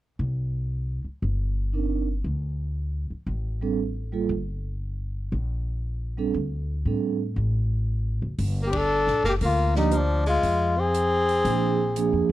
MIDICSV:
0, 0, Header, 1, 7, 480
1, 0, Start_track
1, 0, Key_signature, -2, "minor"
1, 0, Tempo, 512383
1, 177, Time_signature, 4, 2, 24, 8
1, 11541, End_track
2, 0, Start_track
2, 0, Title_t, "Flugelhorn"
2, 0, Program_c, 0, 56
2, 8113, Note_on_c, 0, 67, 76
2, 8217, Note_on_c, 0, 69, 98
2, 8231, Note_off_c, 0, 67, 0
2, 8678, Note_off_c, 0, 69, 0
2, 8698, Note_on_c, 0, 67, 68
2, 8761, Note_off_c, 0, 67, 0
2, 8851, Note_on_c, 0, 65, 78
2, 9135, Note_off_c, 0, 65, 0
2, 9154, Note_on_c, 0, 63, 70
2, 9339, Note_on_c, 0, 62, 66
2, 9353, Note_off_c, 0, 63, 0
2, 9630, Note_off_c, 0, 62, 0
2, 9636, Note_on_c, 0, 65, 74
2, 10116, Note_on_c, 0, 68, 84
2, 10131, Note_off_c, 0, 65, 0
2, 11541, Note_off_c, 0, 68, 0
2, 11541, End_track
3, 0, Start_track
3, 0, Title_t, "Vibraphone"
3, 0, Program_c, 1, 11
3, 1622, Note_on_c, 1, 63, 43
3, 1628, Note_on_c, 1, 60, 34
3, 1631, Note_on_c, 1, 62, 39
3, 1639, Note_on_c, 1, 70, 40
3, 1914, Note_off_c, 1, 63, 0
3, 1917, Note_off_c, 1, 60, 0
3, 1918, Note_off_c, 1, 62, 0
3, 1922, Note_off_c, 1, 70, 0
3, 3385, Note_on_c, 1, 55, 51
3, 3393, Note_on_c, 1, 60, 50
3, 3395, Note_on_c, 1, 62, 43
3, 3398, Note_on_c, 1, 69, 57
3, 3528, Note_off_c, 1, 55, 0
3, 3533, Note_off_c, 1, 60, 0
3, 3534, Note_off_c, 1, 62, 0
3, 3535, Note_off_c, 1, 69, 0
3, 3861, Note_on_c, 1, 55, 50
3, 3867, Note_on_c, 1, 65, 42
3, 3868, Note_on_c, 1, 58, 43
3, 3875, Note_on_c, 1, 69, 51
3, 4007, Note_off_c, 1, 55, 0
3, 4010, Note_off_c, 1, 58, 0
3, 4010, Note_off_c, 1, 65, 0
3, 4014, Note_off_c, 1, 69, 0
3, 5784, Note_on_c, 1, 55, 46
3, 5790, Note_on_c, 1, 60, 46
3, 5792, Note_on_c, 1, 62, 53
3, 5796, Note_on_c, 1, 69, 55
3, 5927, Note_off_c, 1, 55, 0
3, 5930, Note_off_c, 1, 60, 0
3, 5931, Note_off_c, 1, 62, 0
3, 5933, Note_off_c, 1, 69, 0
3, 6429, Note_on_c, 1, 55, 44
3, 6430, Note_on_c, 1, 60, 41
3, 6435, Note_on_c, 1, 62, 45
3, 6438, Note_on_c, 1, 69, 52
3, 6716, Note_off_c, 1, 55, 0
3, 6717, Note_off_c, 1, 60, 0
3, 6719, Note_off_c, 1, 62, 0
3, 6721, Note_off_c, 1, 69, 0
3, 9133, Note_on_c, 1, 53, 56
3, 9140, Note_on_c, 1, 58, 57
3, 9142, Note_on_c, 1, 62, 55
3, 9147, Note_on_c, 1, 67, 67
3, 9278, Note_off_c, 1, 53, 0
3, 9281, Note_off_c, 1, 58, 0
3, 9282, Note_off_c, 1, 62, 0
3, 9284, Note_off_c, 1, 67, 0
3, 10732, Note_on_c, 1, 53, 52
3, 10734, Note_on_c, 1, 58, 42
3, 10738, Note_on_c, 1, 62, 43
3, 10740, Note_on_c, 1, 68, 54
3, 11022, Note_off_c, 1, 53, 0
3, 11023, Note_off_c, 1, 58, 0
3, 11025, Note_off_c, 1, 62, 0
3, 11026, Note_off_c, 1, 68, 0
3, 11207, Note_on_c, 1, 53, 55
3, 11210, Note_on_c, 1, 58, 55
3, 11216, Note_on_c, 1, 62, 55
3, 11218, Note_on_c, 1, 68, 69
3, 11499, Note_off_c, 1, 53, 0
3, 11501, Note_off_c, 1, 58, 0
3, 11504, Note_off_c, 1, 62, 0
3, 11505, Note_off_c, 1, 68, 0
3, 11541, End_track
4, 0, Start_track
4, 0, Title_t, "Tenor saxophone"
4, 0, Program_c, 2, 66
4, 8080, Note_on_c, 2, 58, 63
4, 8169, Note_on_c, 2, 62, 78
4, 8183, Note_off_c, 2, 58, 0
4, 8654, Note_off_c, 2, 62, 0
4, 8664, Note_on_c, 2, 58, 77
4, 8734, Note_off_c, 2, 58, 0
4, 8824, Note_on_c, 2, 58, 61
4, 9120, Note_off_c, 2, 58, 0
4, 9142, Note_on_c, 2, 55, 62
4, 9298, Note_on_c, 2, 53, 62
4, 9312, Note_off_c, 2, 55, 0
4, 9607, Note_off_c, 2, 53, 0
4, 9613, Note_on_c, 2, 56, 67
4, 10090, Note_on_c, 2, 60, 69
4, 10104, Note_off_c, 2, 56, 0
4, 11530, Note_off_c, 2, 60, 0
4, 11541, End_track
5, 0, Start_track
5, 0, Title_t, "Upright bass"
5, 0, Program_c, 3, 32
5, 180, Note_on_c, 3, 36, 71
5, 947, Note_off_c, 3, 36, 0
5, 1146, Note_on_c, 3, 31, 70
5, 2069, Note_off_c, 3, 31, 0
5, 2101, Note_on_c, 3, 38, 66
5, 2869, Note_off_c, 3, 38, 0
5, 3058, Note_on_c, 3, 33, 74
5, 3985, Note_off_c, 3, 33, 0
5, 4020, Note_on_c, 3, 31, 72
5, 4945, Note_off_c, 3, 31, 0
5, 4984, Note_on_c, 3, 34, 71
5, 5906, Note_off_c, 3, 34, 0
5, 5941, Note_on_c, 3, 38, 72
5, 6389, Note_off_c, 3, 38, 0
5, 6420, Note_on_c, 3, 45, 66
5, 6867, Note_off_c, 3, 45, 0
5, 6897, Note_on_c, 3, 33, 72
5, 7663, Note_off_c, 3, 33, 0
5, 7700, Note_on_c, 3, 30, 61
5, 7848, Note_off_c, 3, 30, 0
5, 7855, Note_on_c, 3, 31, 75
5, 8459, Note_off_c, 3, 31, 0
5, 8496, Note_on_c, 3, 34, 55
5, 8646, Note_off_c, 3, 34, 0
5, 8651, Note_on_c, 3, 30, 57
5, 8803, Note_off_c, 3, 30, 0
5, 8816, Note_on_c, 3, 38, 78
5, 9737, Note_off_c, 3, 38, 0
5, 9773, Note_on_c, 3, 41, 68
5, 10694, Note_off_c, 3, 41, 0
5, 10723, Note_on_c, 3, 34, 78
5, 11329, Note_off_c, 3, 34, 0
5, 11361, Note_on_c, 3, 41, 57
5, 11510, Note_off_c, 3, 41, 0
5, 11541, End_track
6, 0, Start_track
6, 0, Title_t, "Muted upright bass strokes"
6, 979, Note_on_c, 9, 29, 31
6, 1072, Note_off_c, 9, 29, 0
6, 2907, Note_on_c, 9, 29, 30
6, 3000, Note_off_c, 9, 29, 0
6, 11541, End_track
7, 0, Start_track
7, 0, Title_t, "Drums"
7, 7856, Note_on_c, 9, 46, 37
7, 7950, Note_off_c, 9, 46, 0
7, 8177, Note_on_c, 9, 51, 63
7, 8181, Note_on_c, 9, 36, 70
7, 8271, Note_off_c, 9, 51, 0
7, 8274, Note_off_c, 9, 36, 0
7, 8498, Note_on_c, 9, 38, 23
7, 8591, Note_off_c, 9, 38, 0
7, 8661, Note_on_c, 9, 38, 39
7, 8755, Note_off_c, 9, 38, 0
7, 8815, Note_on_c, 9, 46, 42
7, 8908, Note_off_c, 9, 46, 0
7, 9137, Note_on_c, 9, 38, 42
7, 9231, Note_off_c, 9, 38, 0
7, 9288, Note_on_c, 9, 42, 48
7, 9381, Note_off_c, 9, 42, 0
7, 9614, Note_on_c, 9, 46, 30
7, 9708, Note_off_c, 9, 46, 0
7, 9773, Note_on_c, 9, 46, 36
7, 9867, Note_off_c, 9, 46, 0
7, 10253, Note_on_c, 9, 42, 45
7, 10347, Note_off_c, 9, 42, 0
7, 10574, Note_on_c, 9, 46, 32
7, 10668, Note_off_c, 9, 46, 0
7, 10726, Note_on_c, 9, 46, 39
7, 10820, Note_off_c, 9, 46, 0
7, 11205, Note_on_c, 9, 42, 47
7, 11299, Note_off_c, 9, 42, 0
7, 11541, End_track
0, 0, End_of_file